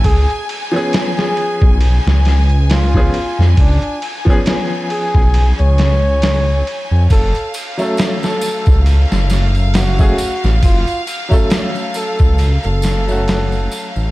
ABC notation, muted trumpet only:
X:1
M:4/4
L:1/16
Q:"Swing 16ths" 1/4=68
K:F#m
V:1 name="Muted trumpet"
G2 z3 G3 z4 ^E4 | D2 z4 G3 c6 z | A2 z3 A3 z4 F4 | ^E2 z4 A3 A6 z |]